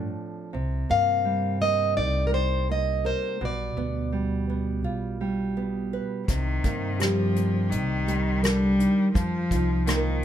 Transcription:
Already playing: G2 A2 F3 C4 D4 A4
0.53 C2 C3
0.89 G2 A#3 F5
1.25 G3
1.61 A#3 D#5
1.97 C2 D#4 D5
2.27 A#4
2.32 G3 C5
2.69 A#3 D#5
3.05 A#4 C5
3.41 B1 B2
3.45 D5
3.77 D2 B3
4.12 G3
4.50 B3
4.84 B1 F4
5.21 G3
5.57 B3
5.93 B4
6.28 C2 C3 D#3, kick, closed hi-hat
6.64 G2 A#3, kick, closed hi-hat
7.00 F3 G3 G4, cross-stick, closed hi-hat
7.36 A#3, closed hi-hat
7.70 C2 D#3, closed hi-hat
8.08 G3, closed hi-hat
8.42 D3 G3 A#4, cross-stick, closed hi-hat
8.79 D#3, closed hi-hat
9.14 F2 F3, kick, closed hi-hat
9.51 C2 D#4 F4, kick, closed hi-hat
9.86 D#3 A#3, cross-stick, closed hi-hat
9.96 A#4

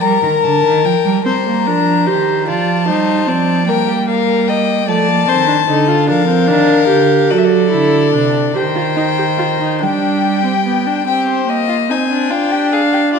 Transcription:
0.01 G3 A#4 A#5
0.23 D#3
0.43 D3 A5
0.64 D#3
0.85 F3 G5
1.05 G3
1.25 G3 C4 C5 A#5
1.46 A#3
1.67 F3 D4 A#4
2.07 D#3 G4 C5
2.47 F3 F4 D5 A5
2.88 G3 D#4 C5
3.27 F3 C4 D5
3.67 G3 A#3 A#4 G5
3.88 G4
4.08 A#4 F5
4.47 D#5 G5
4.88 F3 A3 D5 A5
5.08 A#3
5.28 D#3 C4 C5
5.48 D4
5.67 D3 D#4 A4
5.88 F4
6.08 F3 D4 A#4 F5
6.28 C4
6.47 D#3 D4
6.88 D3 G4
7.30 F#3 F#4 A4 D5
7.38 E5
7.44 D5
7.71 D3 E4
8.13 C3 D4
8.55 D#3 G4 C5 G5
8.75 F4
8.96 D#4
9.17 G4
9.38 F4
9.60 D#4
9.80 G3 D4 G4 G5
10.44 C4
10.65 B3
10.87 D4
11.07 C4 G4 G5
11.29 C5
11.48 A#3 D#5
11.69 F4
11.90 C4 D#4 G#5
12.10 D4
12.29 D4 F4 G5
12.52 G4
12.72 G#4 F5
12.93 G4
13.13 F4 D5

